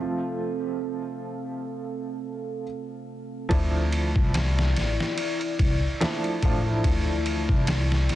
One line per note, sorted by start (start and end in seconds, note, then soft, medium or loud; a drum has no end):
0.00 2.62 F3 medium
0.00 2.63 A3 medium
0.00 2.63 C4 medium
0.00 3.47 C4 medium
0.00 2.64 F4 medium
0.00 3.47 A4 medium
0.00 3.47 F5 medium
3.49 4.11 D2 medium
3.49 4.75 F3 loud
3.49 4.75 A3 medium
3.49 4.76 D4 medium
3.49 8.15 E4 medium
3.49 4.77 E4 loud
3.49 8.15 D5 medium
3.49 kick loud
3.49 ride medium
3.92 ride medium
4.16 4.76 C2 medium
4.16 kick medium
4.34 snare loud
4.34 ride medium
4.59 snare medium
4.76 4.96 A1 medium
4.76 snare soft
4.76 ride medium
5.00 snare medium
5.18 ride medium
5.41 ride soft
5.59 5.80 C2 medium
5.59 kick loud
5.59 ride medium
6.00 6.38 F3 loud
6.00 6.38 A3 medium
6.00 6.38 D4 medium
6.00 6.39 E4 loud
6.00 snare loud
6.00 ride medium
6.24 ride soft
6.42 6.80 A1 medium
6.42 6.60 F3 medium
6.42 6.60 A3 medium
6.42 6.61 D4 medium
6.42 6.61 F4 medium
6.42 kick medium
6.42 ride medium
6.64 8.15 F3 medium
6.64 8.15 A3 medium
6.64 8.15 D4 medium
6.64 8.15 E4 medium
6.84 7.45 D2 loud
6.84 kick loud
6.84 ride medium
7.26 ride medium
7.49 8.10 C2 medium
7.49 kick medium
7.67 snare loud
7.67 ride medium
7.92 snare soft
8.09 8.15 A1 medium
8.09 snare soft
8.09 ride medium